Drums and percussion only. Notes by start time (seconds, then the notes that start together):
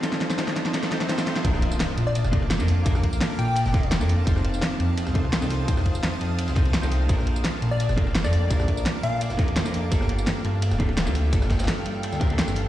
0.03 snare, closed hi-hat, ride, tambourine
0.13 snare, tambourine
0.21 snare, closed hi-hat, ride
0.30 snare, tambourine
0.38 snare, closed hi-hat, ride, tambourine
0.48 snare
0.56 snare, closed hi-hat, ride, tambourine
0.66 snare
0.74 snare, closed hi-hat, ride, tambourine
0.83 snare, closed hi-hat, tambourine
0.91 snare, closed hi-hat, ride
1.01 snare, closed hi-hat, ride
1.09 snare, closed hi-hat, ride, tambourine
1.18 snare, tambourine
1.27 snare, closed hi-hat, ride
1.36 snare
1.45 kick, closed hi-hat, ride, tambourine
1.54 cross-stick, snare
1.62 closed hi-hat, ride
1.72 tambourine
1.80 snare, closed hi-hat, ride, tambourine
1.98 closed hi-hat, ride, tambourine
2.15 closed hi-hat, ride, tambourine
2.24 cross-stick, snare, closed hi-hat, tambourine
2.33 kick, closed hi-hat, ride
2.42 cross-stick, ride
2.50 snare, closed hi-hat, ride, tambourine
2.60 cross-stick, ride, tambourine
2.68 open hi-hat, ride, tambourine
2.86 kick, closed hi-hat, ride, tambourine
2.95 cross-stick, snare, tambourine
3.03 kick, closed hi-hat, ride
3.13 tambourine
3.21 snare, closed hi-hat, ride, tambourine
3.39 closed hi-hat, ride, tambourine
3.56 closed hi-hat, ride, tambourine
3.66 snare, closed hi-hat, tambourine
3.74 kick, snare, closed hi-hat, ride
3.83 closed hi-hat, ride
3.91 snare, closed hi-hat, ride, tambourine
4.01 cross-stick, tambourine
4.09 open hi-hat, ride, tambourine
4.27 kick, closed hi-hat, ride, tambourine
4.36 cross-stick, snare
4.45 closed hi-hat, ride
4.54 tambourine
4.61 snare, closed hi-hat, ride, tambourine
4.80 closed hi-hat, ride, tambourine
4.97 closed hi-hat, ride, tambourine
5.07 cross-stick, snare, closed hi-hat, tambourine
5.15 kick, closed hi-hat, ride
5.24 cross-stick, ride
5.33 snare, closed hi-hat, ride, tambourine
5.42 cross-stick, ride, tambourine
5.50 open hi-hat, ride, tambourine
5.68 kick, closed hi-hat, ride, tambourine
5.77 cross-stick, snare, tambourine
5.86 kick, closed hi-hat, ride
5.95 tambourine
6.03 snare, closed hi-hat, ride, tambourine
6.21 closed hi-hat, ride, tambourine
6.38 closed hi-hat, ride, tambourine
6.48 snare, closed hi-hat, tambourine
6.56 kick, snare, closed hi-hat, ride
6.65 closed hi-hat, ride
6.73 snare, closed hi-hat, ride, tambourine
6.83 cross-stick, tambourine
6.92 open hi-hat, ride, tambourine
7.09 kick, closed hi-hat, ride, tambourine
7.18 cross-stick, snare
7.27 closed hi-hat, ride
7.36 tambourine
7.44 snare, closed hi-hat, ride, tambourine
7.62 closed hi-hat, ride, tambourine
7.80 closed hi-hat, ride, tambourine
7.89 cross-stick, snare, closed hi-hat, tambourine
7.98 kick, closed hi-hat, ride
8.07 cross-stick, ride
8.15 snare, closed hi-hat, ride, tambourine
8.24 cross-stick, ride, tambourine
8.33 open hi-hat, ride, tambourine
8.50 kick, closed hi-hat, ride, tambourine
8.60 cross-stick, snare, tambourine
8.68 kick, closed hi-hat, ride
8.77 tambourine
8.86 snare, closed hi-hat, ride, tambourine
9.03 closed hi-hat, ride, tambourine
9.21 closed hi-hat, ride, tambourine
9.30 snare, closed hi-hat, tambourine
9.39 kick, snare, closed hi-hat, ride
9.48 closed hi-hat, ride
9.56 snare, closed hi-hat, ride, tambourine
9.66 cross-stick, tambourine
9.74 open hi-hat, ride, tambourine
9.91 kick, closed hi-hat, ride, tambourine
10.01 cross-stick, snare
10.09 closed hi-hat, ride
10.18 tambourine
10.27 snare, closed hi-hat, ride, tambourine
10.45 closed hi-hat, ride, tambourine
10.62 closed hi-hat, ride, tambourine
10.71 cross-stick, snare, closed hi-hat, tambourine
10.80 kick, closed hi-hat, ride
10.89 cross-stick, ride
10.97 snare, closed hi-hat, ride, tambourine
11.07 cross-stick, ride, tambourine
11.15 open hi-hat, ride, tambourine
11.32 kick, closed hi-hat, ride, tambourine
11.41 cross-stick, snare, tambourine
11.49 kick, snare, closed hi-hat, ride
11.59 snare, closed hi-hat, ride, tambourine
11.63 snare, ride
11.68 snare, closed hi-hat, ride, tambourine
11.86 closed hi-hat, ride, tambourine
12.03 closed hi-hat, ride, tambourine
12.12 snare, closed hi-hat, tambourine
12.21 kick, snare, closed hi-hat, ride
12.30 closed hi-hat, ride
12.38 snare, closed hi-hat, ride, tambourine
12.48 cross-stick, tambourine
12.56 open hi-hat, ride, tambourine